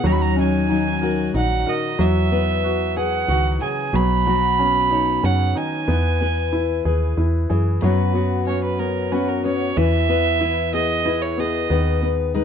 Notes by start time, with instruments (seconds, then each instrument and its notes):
Already playing: felt piano B3 E4 G#4
0.04 fm bass D#2, steel-string acoustic guitar D#3 F#3 C#4 D#4 F#4, felt piano F#3, fiddle A#5
0.12 fiddle B5
0.21 fiddle A#5
0.36 felt piano C#4, steel-string acoustic guitar D#4, fiddle G#5
0.69 steel-string acoustic guitar F#3, felt piano D#4
1.02 steel-string acoustic guitar F#4, felt piano A#4
1.34 fm bass A#1, steel-string acoustic guitar A#2 D#4, felt piano D#4, fiddle F#5
1.66 steel-string acoustic guitar F#4, felt piano A#4, fiddle D#5
1.99 fm bass E2, steel-string acoustic guitar E3, felt piano F#3, fiddle E5
2.31 felt piano B3, steel-string acoustic guitar B4
2.64 felt piano F#4
2.97 felt piano G#4, steel-string acoustic guitar B4, fiddle F#5
3.28 fm bass C#2, steel-string acoustic guitar D#3, felt piano F#4
3.62 steel-string acoustic guitar C#3, felt piano G#4, fiddle G#5
3.93 fm bass B1, steel-string acoustic guitar B2, felt piano F#3, fiddle B5
4.27 felt piano F#3, steel-string acoustic guitar F#4
4.59 steel-string acoustic guitar B3, felt piano C#4
4.91 felt piano D#4, steel-string acoustic guitar C#5
5.23 fm bass F#2, steel-string acoustic guitar C#3, felt piano C#4, fiddle F#5
5.55 steel-string acoustic guitar D#3, felt piano D#4, fiddle G#5
5.88 fm bass E2, steel-string acoustic guitar E3, felt piano B3
6.20 felt piano B3, steel-string acoustic guitar B4
6.53 felt piano E4
6.85 fm bass D#2, felt piano G#4, steel-string acoustic guitar B4
7.17 fm bass E2, felt piano E4
7.50 fm bass F#2, steel-string acoustic guitar E3, felt piano G#4
7.82 steel-string acoustic guitar F#2 B3 C#4 F#4, fm bass F#2, felt piano F#3, fiddle B4
8.15 felt piano B3, steel-string acoustic guitar F#4
8.47 steel-string acoustic guitar B3, felt piano C#4, fiddle C#5
8.64 fiddle B4
8.79 felt piano B3, steel-string acoustic guitar C#4, fiddle A#4
9.12 steel-string acoustic guitar B3 F#4, felt piano C#4, fiddle B4
9.28 fiddle A#4
9.44 felt piano B3, steel-string acoustic guitar C#4, fiddle C#5
9.77 fm bass E2, felt piano E3, steel-string acoustic guitar E3 B4, fiddle E5
10.09 felt piano B3, steel-string acoustic guitar B4
10.41 steel-string acoustic guitar E4 B4, felt piano E4
10.73 felt piano B3, steel-string acoustic guitar G#4, fiddle D#5
11.05 felt piano E4, steel-string acoustic guitar E4 B4
11.22 fiddle C#5
11.37 felt piano B3, steel-string acoustic guitar G#4, fiddle D#5
11.70 fm bass D#2, steel-string acoustic guitar D#3 B4, felt piano B3
12.02 felt piano B3, steel-string acoustic guitar B4
12.34 steel-string acoustic guitar G#3 B4, felt piano D#4